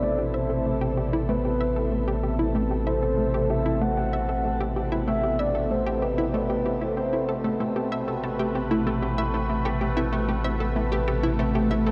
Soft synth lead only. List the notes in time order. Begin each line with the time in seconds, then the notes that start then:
0.03 D5
0.27 D5
0.34 C5
1.28 B4
2.87 C5
3.50 E5
3.81 F#5
5.08 E5
5.39 D5
5.71 C5
6.03 B4
6.34 B4
6.97 C5